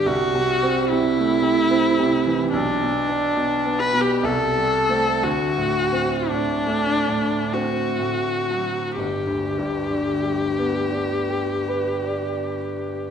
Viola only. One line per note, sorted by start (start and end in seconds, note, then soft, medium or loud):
0.07 0.91 F#4 medium
0.89 2.51 E4 medium
2.52 3.81 D4 medium
3.79 4.03 B4 medium
4.01 4.26 G4 medium
4.25 5.25 A4 medium
5.24 6.31 F#4 medium
6.29 7.54 D4 medium
7.53 8.98 F#4 medium
8.99 13.08 G4 soft